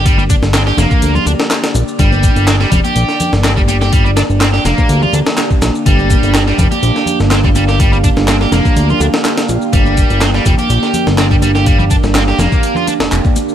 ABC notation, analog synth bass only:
X:1
M:4/4
L:1/16
Q:"Swing 16ths" 1/4=124
K:Gm
V:1 name="Analog synth bass" clef=bass
G,,,3 G,,,3 F,,, z D,, z D,, z3 B,,, z | G,,,3 G,,,3 F,,, z B,,, z2 G,,,4- G,,,- | G,,,3 G,,,3 F,,, z D,, z D,, z3 B,,, z | G,,,3 G,,,3 F,,, z B,,, z2 G,,,4- G,,,- |
G,,,3 G,,,3 F,,, z D,, z D,, z3 B,,, z | G,,,3 G,,,3 F,,, z B,,, z2 G,,,4- G,,,- | G,,,3 G,,,3 F,,, z4 F,,, F,,, z3 |]